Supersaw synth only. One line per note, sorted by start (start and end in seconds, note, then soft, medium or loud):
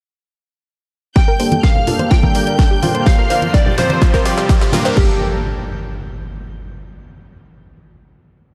1.40 1.48 G2 medium
1.40 1.48 A#3 medium
1.40 1.48 D4 medium
1.40 1.48 G4 medium
1.40 1.48 A4 loud
1.87 2.32 G2 medium
1.87 2.32 A#3 medium
1.87 2.32 D4 medium
1.87 2.32 G4 medium
1.87 2.32 A4 loud
2.35 2.43 G2 medium
2.35 2.43 A#3 medium
2.35 2.43 D4 medium
2.35 2.43 G4 medium
2.35 2.43 A#4 medium
2.82 3.27 A#2 medium
2.82 3.27 A#3 medium
2.82 3.27 D4 medium
2.82 3.27 F4 medium
2.82 3.27 C5 medium
3.30 3.39 A#2 medium
3.30 3.39 A#3 medium
3.30 3.39 D4 medium
3.30 3.39 F4 medium
3.30 3.39 A#4 loud
3.78 4.23 F3 medium
3.78 4.23 C4 medium
3.78 4.23 F4 medium
3.78 4.23 G4 medium
3.78 4.23 C5 loud
4.25 4.34 F3 medium
4.25 4.34 C4 medium
4.25 4.34 F4 medium
4.25 4.34 G4 medium
4.25 4.34 D5 medium
4.73 5.18 G2 medium
4.73 4.96 A#3 medium
4.73 4.96 D4 medium
4.73 4.96 G4 medium
4.73 5.18 A#4 medium
4.97 5.15 A#3 medium
4.97 5.15 D4 medium
4.97 5.15 G4 medium
4.97 5.15 A4 medium